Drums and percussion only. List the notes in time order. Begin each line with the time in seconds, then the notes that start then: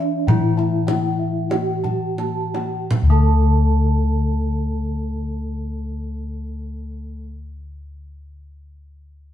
0.00 kendang slap
0.28 kendang low
0.59 kendang slap
0.88 kendang high, kendang low
1.51 kendang slap, kendang high
1.84 kendang low
2.18 kendang high
2.54 kendang high
2.91 kendang low